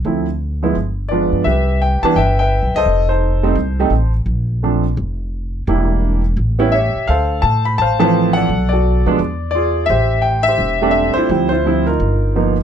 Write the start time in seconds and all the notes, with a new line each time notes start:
0.05 D2 F3 A3 C4 E4
0.63 F3 G#3 B3 E4
0.75 G1
1.09 F3 G#3 B3 D4 F4 B4 D5
1.32 G2
1.44 C2 G4 B4 E5
1.82 G5
2.03 E3 G3 B3 D4 A5, muted upright bass stroke
2.16 G1 B4 E5 G5
2.39 B4 E5 G5
2.63 B1
2.74 C2 A4 C5 D#5
2.85 F1
3.09 D#4 A4 C5
3.43 G3 A3 C4 D#4
3.56 C2
3.80 G3 A3 C4 D#4
3.90 A1
4.26 A#1
4.63 F3 A3 C4 D4
4.97 F1
5.67 E1 G3 A#3 D4 E4
6.37 A1
6.59 G3 B3 C#4 E4
6.72 G4 C#5 E5
6.95 muted upright bass stroke
7.08 D2 A4 C5 F5
7.42 A2 A5
7.65 B5
7.78 A1 C5 F5 A5
7.99 E3 F3 A3 C4 A5
8.04 C5 F5
8.33 A4 D5 F#5
8.49 B1
8.69 A4 D5
8.73 F#4
9.06 B2 F3 G#3 B3 D4
9.19 E2
9.51 D5
9.55 F4 G#4
9.86 A1 E5
9.90 G4 C5
10.22 G5
10.43 E5
10.48 G4 C5
10.58 E1
10.82 G3 A3 C4 D4
10.91 E5
11.14 E4 F4 C5, muted upright bass stroke
11.29 D2 F3 G3 C4 E4
11.49 E4 F4 C5
11.66 F3 G3 C4 E4
11.87 D#4 F4 A#4
12.00 G1
12.36 F3 A#3 B3 D#4